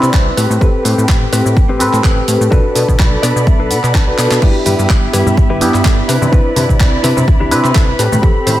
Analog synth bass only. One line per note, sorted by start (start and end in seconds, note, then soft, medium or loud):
0.03 0.10 C3 medium
0.14 0.31 C2 medium
0.37 0.46 A2 loud
0.50 0.58 A2 loud
0.61 0.70 A1 medium
0.85 0.94 A2 loud
0.98 1.06 A2 medium
1.09 1.26 A1 medium
1.33 1.42 A2 medium
1.46 1.58 A2 medium
1.57 1.82 A1 medium
1.80 1.89 A2 medium
1.93 2.01 A2 medium
2.04 2.21 A1 medium
2.28 2.37 A2 loud
2.41 2.48 A2 medium
2.52 2.61 B1 loud
2.76 2.85 B2 loud
2.88 2.96 B2 medium
2.99 3.17 B1 medium
3.23 3.32 B2 medium
3.36 3.48 B2 medium
3.47 3.72 B1 medium
3.71 3.80 B2 loud
3.84 3.96 B2 medium
3.95 4.12 B1 medium
4.18 4.27 B2 medium
4.31 4.39 B2 loud
4.42 4.51 G1 loud
4.66 4.75 G2 loud
4.79 4.87 G2 medium
4.90 5.07 G1 medium
5.14 5.23 G2 medium
5.26 5.39 G2 medium
5.37 5.63 G1 loud
5.61 5.70 G2 medium
5.74 5.82 G2 medium
5.85 6.02 G1 medium
6.09 6.18 C3 loud
6.22 6.29 C3 loud
6.33 6.42 C2 loud
6.56 6.65 C3 loud
6.69 6.77 C3 medium
6.80 6.98 C2 medium
7.04 7.13 C3 medium
7.17 7.29 C3 medium
7.28 7.53 C2 medium
7.52 7.61 C3 loud
7.64 7.72 C3 medium
7.75 7.93 C2 medium
7.99 8.08 A2 loud
8.12 8.20 A2 medium
8.23 8.32 A1 loud
8.47 8.56 A2 loud